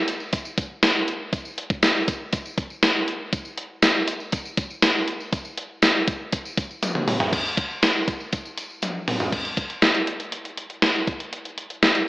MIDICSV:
0, 0, Header, 1, 2, 480
1, 0, Start_track
1, 0, Tempo, 500000
1, 1274, Time_signature, 4, 2, 24, 8
1, 11601, End_track
2, 0, Start_track
2, 0, Title_t, "Drums"
2, 73, Note_on_c, 9, 54, 52
2, 75, Note_on_c, 9, 42, 85
2, 169, Note_off_c, 9, 54, 0
2, 171, Note_off_c, 9, 42, 0
2, 193, Note_on_c, 9, 54, 33
2, 289, Note_off_c, 9, 54, 0
2, 314, Note_on_c, 9, 42, 94
2, 316, Note_on_c, 9, 54, 54
2, 317, Note_on_c, 9, 36, 88
2, 410, Note_off_c, 9, 42, 0
2, 412, Note_off_c, 9, 54, 0
2, 413, Note_off_c, 9, 36, 0
2, 434, Note_on_c, 9, 54, 56
2, 530, Note_off_c, 9, 54, 0
2, 553, Note_on_c, 9, 54, 56
2, 554, Note_on_c, 9, 36, 100
2, 554, Note_on_c, 9, 42, 77
2, 649, Note_off_c, 9, 54, 0
2, 650, Note_off_c, 9, 36, 0
2, 650, Note_off_c, 9, 42, 0
2, 794, Note_on_c, 9, 38, 114
2, 795, Note_on_c, 9, 42, 96
2, 795, Note_on_c, 9, 54, 90
2, 799, Note_off_c, 9, 54, 0
2, 799, Note_on_c, 9, 54, 67
2, 890, Note_off_c, 9, 38, 0
2, 891, Note_off_c, 9, 42, 0
2, 895, Note_off_c, 9, 54, 0
2, 1035, Note_on_c, 9, 42, 66
2, 1131, Note_off_c, 9, 42, 0
2, 1274, Note_on_c, 9, 36, 120
2, 1274, Note_on_c, 9, 42, 91
2, 1276, Note_on_c, 9, 54, 52
2, 1370, Note_off_c, 9, 36, 0
2, 1370, Note_off_c, 9, 42, 0
2, 1372, Note_off_c, 9, 54, 0
2, 1393, Note_on_c, 9, 54, 56
2, 1489, Note_off_c, 9, 54, 0
2, 1515, Note_on_c, 9, 42, 84
2, 1611, Note_off_c, 9, 42, 0
2, 1633, Note_on_c, 9, 36, 105
2, 1636, Note_on_c, 9, 54, 28
2, 1729, Note_off_c, 9, 36, 0
2, 1732, Note_off_c, 9, 54, 0
2, 1752, Note_on_c, 9, 54, 89
2, 1753, Note_off_c, 9, 54, 0
2, 1753, Note_on_c, 9, 54, 71
2, 1754, Note_on_c, 9, 42, 92
2, 1755, Note_on_c, 9, 38, 127
2, 1849, Note_off_c, 9, 54, 0
2, 1850, Note_off_c, 9, 42, 0
2, 1851, Note_off_c, 9, 38, 0
2, 1995, Note_on_c, 9, 54, 49
2, 1996, Note_on_c, 9, 36, 102
2, 1996, Note_on_c, 9, 42, 92
2, 2091, Note_off_c, 9, 54, 0
2, 2092, Note_off_c, 9, 36, 0
2, 2092, Note_off_c, 9, 42, 0
2, 2233, Note_on_c, 9, 42, 94
2, 2237, Note_on_c, 9, 36, 89
2, 2237, Note_on_c, 9, 54, 56
2, 2329, Note_off_c, 9, 42, 0
2, 2333, Note_off_c, 9, 36, 0
2, 2333, Note_off_c, 9, 54, 0
2, 2357, Note_on_c, 9, 54, 57
2, 2453, Note_off_c, 9, 54, 0
2, 2473, Note_on_c, 9, 42, 74
2, 2474, Note_on_c, 9, 36, 101
2, 2477, Note_on_c, 9, 54, 56
2, 2569, Note_off_c, 9, 42, 0
2, 2570, Note_off_c, 9, 36, 0
2, 2573, Note_off_c, 9, 54, 0
2, 2595, Note_on_c, 9, 54, 37
2, 2691, Note_off_c, 9, 54, 0
2, 2713, Note_on_c, 9, 54, 81
2, 2714, Note_on_c, 9, 38, 118
2, 2715, Note_on_c, 9, 42, 97
2, 2718, Note_off_c, 9, 54, 0
2, 2718, Note_on_c, 9, 54, 72
2, 2810, Note_off_c, 9, 38, 0
2, 2811, Note_off_c, 9, 42, 0
2, 2814, Note_off_c, 9, 54, 0
2, 2955, Note_on_c, 9, 42, 66
2, 3051, Note_off_c, 9, 42, 0
2, 3194, Note_on_c, 9, 36, 125
2, 3194, Note_on_c, 9, 42, 97
2, 3195, Note_on_c, 9, 54, 53
2, 3290, Note_off_c, 9, 36, 0
2, 3290, Note_off_c, 9, 42, 0
2, 3291, Note_off_c, 9, 54, 0
2, 3312, Note_on_c, 9, 54, 55
2, 3408, Note_off_c, 9, 54, 0
2, 3432, Note_on_c, 9, 42, 88
2, 3528, Note_off_c, 9, 42, 0
2, 3670, Note_on_c, 9, 54, 89
2, 3671, Note_off_c, 9, 54, 0
2, 3671, Note_on_c, 9, 42, 90
2, 3671, Note_on_c, 9, 54, 68
2, 3673, Note_on_c, 9, 38, 124
2, 3767, Note_off_c, 9, 42, 0
2, 3767, Note_off_c, 9, 54, 0
2, 3769, Note_off_c, 9, 38, 0
2, 3912, Note_on_c, 9, 42, 89
2, 3912, Note_on_c, 9, 54, 52
2, 4008, Note_off_c, 9, 42, 0
2, 4008, Note_off_c, 9, 54, 0
2, 4033, Note_on_c, 9, 54, 32
2, 4129, Note_off_c, 9, 54, 0
2, 4150, Note_on_c, 9, 42, 94
2, 4154, Note_on_c, 9, 54, 56
2, 4155, Note_on_c, 9, 36, 89
2, 4246, Note_off_c, 9, 42, 0
2, 4250, Note_off_c, 9, 54, 0
2, 4251, Note_off_c, 9, 36, 0
2, 4275, Note_on_c, 9, 54, 52
2, 4371, Note_off_c, 9, 54, 0
2, 4390, Note_on_c, 9, 42, 72
2, 4392, Note_on_c, 9, 36, 96
2, 4392, Note_on_c, 9, 54, 53
2, 4486, Note_off_c, 9, 42, 0
2, 4488, Note_off_c, 9, 36, 0
2, 4488, Note_off_c, 9, 54, 0
2, 4516, Note_on_c, 9, 54, 37
2, 4612, Note_off_c, 9, 54, 0
2, 4631, Note_on_c, 9, 38, 118
2, 4632, Note_on_c, 9, 42, 98
2, 4635, Note_on_c, 9, 54, 72
2, 4636, Note_off_c, 9, 54, 0
2, 4636, Note_on_c, 9, 54, 88
2, 4727, Note_off_c, 9, 38, 0
2, 4728, Note_off_c, 9, 42, 0
2, 4732, Note_off_c, 9, 54, 0
2, 4873, Note_on_c, 9, 42, 64
2, 4969, Note_off_c, 9, 42, 0
2, 4996, Note_on_c, 9, 54, 34
2, 5092, Note_off_c, 9, 54, 0
2, 5112, Note_on_c, 9, 42, 90
2, 5113, Note_on_c, 9, 36, 123
2, 5114, Note_on_c, 9, 54, 52
2, 5208, Note_off_c, 9, 42, 0
2, 5209, Note_off_c, 9, 36, 0
2, 5210, Note_off_c, 9, 54, 0
2, 5231, Note_on_c, 9, 54, 57
2, 5327, Note_off_c, 9, 54, 0
2, 5352, Note_on_c, 9, 42, 84
2, 5448, Note_off_c, 9, 42, 0
2, 5589, Note_on_c, 9, 54, 90
2, 5591, Note_off_c, 9, 54, 0
2, 5591, Note_on_c, 9, 54, 74
2, 5592, Note_on_c, 9, 42, 89
2, 5593, Note_on_c, 9, 38, 121
2, 5687, Note_off_c, 9, 54, 0
2, 5688, Note_off_c, 9, 42, 0
2, 5689, Note_off_c, 9, 38, 0
2, 5832, Note_on_c, 9, 42, 84
2, 5833, Note_on_c, 9, 36, 109
2, 5834, Note_on_c, 9, 54, 48
2, 5928, Note_off_c, 9, 42, 0
2, 5929, Note_off_c, 9, 36, 0
2, 5930, Note_off_c, 9, 54, 0
2, 6072, Note_on_c, 9, 42, 94
2, 6074, Note_on_c, 9, 36, 85
2, 6074, Note_on_c, 9, 54, 58
2, 6168, Note_off_c, 9, 42, 0
2, 6170, Note_off_c, 9, 36, 0
2, 6170, Note_off_c, 9, 54, 0
2, 6196, Note_on_c, 9, 54, 52
2, 6292, Note_off_c, 9, 54, 0
2, 6312, Note_on_c, 9, 36, 96
2, 6312, Note_on_c, 9, 42, 73
2, 6314, Note_on_c, 9, 54, 54
2, 6408, Note_off_c, 9, 36, 0
2, 6408, Note_off_c, 9, 42, 0
2, 6410, Note_off_c, 9, 54, 0
2, 6438, Note_on_c, 9, 54, 36
2, 6534, Note_off_c, 9, 54, 0
2, 6553, Note_on_c, 9, 42, 96
2, 6553, Note_on_c, 9, 48, 65
2, 6554, Note_on_c, 9, 54, 84
2, 6649, Note_off_c, 9, 42, 0
2, 6649, Note_off_c, 9, 48, 0
2, 6650, Note_off_c, 9, 54, 0
2, 6674, Note_on_c, 9, 47, 66
2, 6770, Note_off_c, 9, 47, 0
2, 6793, Note_on_c, 9, 45, 95
2, 6793, Note_on_c, 9, 46, 68
2, 6889, Note_off_c, 9, 45, 0
2, 6889, Note_off_c, 9, 46, 0
2, 6912, Note_on_c, 9, 54, 33
2, 6914, Note_on_c, 9, 43, 100
2, 7008, Note_off_c, 9, 54, 0
2, 7010, Note_off_c, 9, 43, 0
2, 7033, Note_on_c, 9, 36, 115
2, 7035, Note_on_c, 9, 42, 84
2, 7035, Note_on_c, 9, 49, 89
2, 7035, Note_on_c, 9, 54, 51
2, 7129, Note_off_c, 9, 36, 0
2, 7131, Note_off_c, 9, 42, 0
2, 7131, Note_off_c, 9, 49, 0
2, 7131, Note_off_c, 9, 54, 0
2, 7155, Note_on_c, 9, 54, 53
2, 7251, Note_off_c, 9, 54, 0
2, 7271, Note_on_c, 9, 36, 91
2, 7274, Note_on_c, 9, 42, 76
2, 7367, Note_off_c, 9, 36, 0
2, 7370, Note_off_c, 9, 42, 0
2, 7396, Note_on_c, 9, 54, 27
2, 7492, Note_off_c, 9, 54, 0
2, 7513, Note_on_c, 9, 42, 86
2, 7515, Note_on_c, 9, 38, 117
2, 7515, Note_on_c, 9, 54, 85
2, 7609, Note_off_c, 9, 42, 0
2, 7611, Note_off_c, 9, 38, 0
2, 7611, Note_off_c, 9, 54, 0
2, 7754, Note_on_c, 9, 36, 92
2, 7754, Note_on_c, 9, 42, 83
2, 7757, Note_on_c, 9, 54, 45
2, 7850, Note_off_c, 9, 36, 0
2, 7850, Note_off_c, 9, 42, 0
2, 7853, Note_off_c, 9, 54, 0
2, 7875, Note_on_c, 9, 54, 30
2, 7971, Note_off_c, 9, 54, 0
2, 7992, Note_on_c, 9, 42, 84
2, 7995, Note_on_c, 9, 36, 77
2, 7997, Note_on_c, 9, 54, 50
2, 8088, Note_off_c, 9, 42, 0
2, 8091, Note_off_c, 9, 36, 0
2, 8093, Note_off_c, 9, 54, 0
2, 8116, Note_on_c, 9, 54, 48
2, 8212, Note_off_c, 9, 54, 0
2, 8232, Note_on_c, 9, 42, 70
2, 8232, Note_on_c, 9, 54, 54
2, 8328, Note_off_c, 9, 42, 0
2, 8328, Note_off_c, 9, 54, 0
2, 8355, Note_on_c, 9, 54, 34
2, 8451, Note_off_c, 9, 54, 0
2, 8468, Note_on_c, 9, 54, 82
2, 8473, Note_on_c, 9, 42, 91
2, 8473, Note_on_c, 9, 48, 56
2, 8564, Note_off_c, 9, 54, 0
2, 8569, Note_off_c, 9, 42, 0
2, 8569, Note_off_c, 9, 48, 0
2, 8713, Note_on_c, 9, 46, 59
2, 8714, Note_on_c, 9, 45, 83
2, 8809, Note_off_c, 9, 46, 0
2, 8810, Note_off_c, 9, 45, 0
2, 8830, Note_on_c, 9, 54, 30
2, 8833, Note_on_c, 9, 43, 83
2, 8926, Note_off_c, 9, 54, 0
2, 8929, Note_off_c, 9, 43, 0
2, 8951, Note_on_c, 9, 36, 99
2, 8952, Note_on_c, 9, 42, 78
2, 8952, Note_on_c, 9, 49, 75
2, 9047, Note_off_c, 9, 36, 0
2, 9048, Note_off_c, 9, 42, 0
2, 9048, Note_off_c, 9, 49, 0
2, 9072, Note_on_c, 9, 42, 48
2, 9168, Note_off_c, 9, 42, 0
2, 9189, Note_on_c, 9, 36, 80
2, 9191, Note_on_c, 9, 42, 70
2, 9285, Note_off_c, 9, 36, 0
2, 9287, Note_off_c, 9, 42, 0
2, 9311, Note_on_c, 9, 42, 44
2, 9407, Note_off_c, 9, 42, 0
2, 9428, Note_on_c, 9, 42, 77
2, 9430, Note_on_c, 9, 38, 102
2, 9524, Note_off_c, 9, 42, 0
2, 9526, Note_off_c, 9, 38, 0
2, 9548, Note_on_c, 9, 42, 48
2, 9644, Note_off_c, 9, 42, 0
2, 9670, Note_on_c, 9, 42, 71
2, 9766, Note_off_c, 9, 42, 0
2, 9791, Note_on_c, 9, 42, 50
2, 9887, Note_off_c, 9, 42, 0
2, 9909, Note_on_c, 9, 42, 79
2, 10005, Note_off_c, 9, 42, 0
2, 10033, Note_on_c, 9, 42, 49
2, 10129, Note_off_c, 9, 42, 0
2, 10151, Note_on_c, 9, 42, 66
2, 10247, Note_off_c, 9, 42, 0
2, 10271, Note_on_c, 9, 42, 45
2, 10367, Note_off_c, 9, 42, 0
2, 10389, Note_on_c, 9, 38, 92
2, 10390, Note_on_c, 9, 42, 79
2, 10485, Note_off_c, 9, 38, 0
2, 10486, Note_off_c, 9, 42, 0
2, 10515, Note_on_c, 9, 42, 36
2, 10611, Note_off_c, 9, 42, 0
2, 10631, Note_on_c, 9, 36, 90
2, 10631, Note_on_c, 9, 42, 54
2, 10727, Note_off_c, 9, 36, 0
2, 10727, Note_off_c, 9, 42, 0
2, 10754, Note_on_c, 9, 42, 48
2, 10850, Note_off_c, 9, 42, 0
2, 10874, Note_on_c, 9, 42, 78
2, 10970, Note_off_c, 9, 42, 0
2, 10995, Note_on_c, 9, 42, 48
2, 11091, Note_off_c, 9, 42, 0
2, 11114, Note_on_c, 9, 42, 72
2, 11210, Note_off_c, 9, 42, 0
2, 11234, Note_on_c, 9, 42, 48
2, 11330, Note_off_c, 9, 42, 0
2, 11352, Note_on_c, 9, 42, 73
2, 11354, Note_on_c, 9, 38, 99
2, 11448, Note_off_c, 9, 42, 0
2, 11450, Note_off_c, 9, 38, 0
2, 11472, Note_on_c, 9, 42, 49
2, 11568, Note_off_c, 9, 42, 0
2, 11601, End_track
0, 0, End_of_file